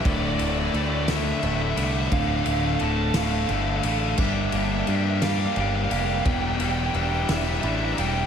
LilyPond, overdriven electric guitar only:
\new Staff \with { instrumentName = "Overdriven electric guitar" } { \time 6/8 \key d \minor \tempo 4. = 58 <d, a, d a e'>8 <d a e'>8 <a, d a e'>8 <d a e'>8 <a, d a e'>8 <d a e'>8 | <d, a, d a e'>8 <d a e'>8 <a, d a e'>8 <d a e'>8 <a, d a e'>8 <d a e'>8 | <g, d g bes d' g'>8 <g bes d' g'>8 <g bes d' g'>8 <g bes d' g'>8 <g bes d' g'>8 <g bes d' g'>8 | <e, b, e g d' e'>8 <e g d' e'>8 <e g d' e'>8 <e g d' e'>8 <e g d' e'>8 <e g d' e'>8 | }